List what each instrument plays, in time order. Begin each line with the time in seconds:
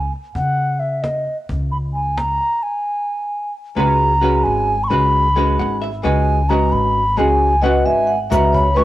Already playing: flute G#5
0.13 cajon slap
0.35 upright bass C#3, flute F#5, cajon bass
0.58 cajon slap
0.80 flute E5, cajon slap
1.02 flute D#5, cajon slap
1.27 cajon slap
1.49 upright bass C#2, cajon bass
1.72 flute B5, cajon slap
1.94 flute G#5, cajon slap
2.17 flute A#5, cajon slap
2.40 cajon slap
2.63 flute G#5
3.76 upright bass C#2, hollow-body jazz guitar G#3 C#4 F#4 B4, flute A#5
4.21 hollow-body jazz guitar G#3 C#4 F#4 B4
4.44 upright bass G#1, flute G#5
4.84 flute C#6
4.88 upright bass C#2, hollow-body jazz guitar G#3 C#4 F#4 B4, flute B5
5.36 hollow-body jazz guitar G#3 C#4 F#4 B4
5.59 upright bass G#1, hollow-body jazz guitar F#5
5.82 hollow-body jazz guitar E5
6.03 upright bass C#2, hollow-body jazz guitar G#3 C#4 F#4 B4, flute G#5
6.49 hollow-body jazz guitar G#3 C#4 F#4 B4, flute A#5
6.72 upright bass G#1, flute B5
7.17 upright bass C#2, hollow-body jazz guitar G#3 C#4 F#4 G#4, flute G#5
7.62 hollow-body jazz guitar G#3 C#4 F#4 B4, vibraphone D#5, flute F#5
7.85 upright bass G#1, vibraphone E5, flute G#5
8.07 vibraphone F#5
8.30 upright bass C#2, hollow-body jazz guitar G#3 C#4 F#4 B4, vibraphone E5, flute A#5, cajon bass, shaker
8.52 vibraphone C#5, flute B5, cajon bass
8.74 hollow-body jazz guitar G#3 C#4 F#4 B4, vibraphone B4, flute C#6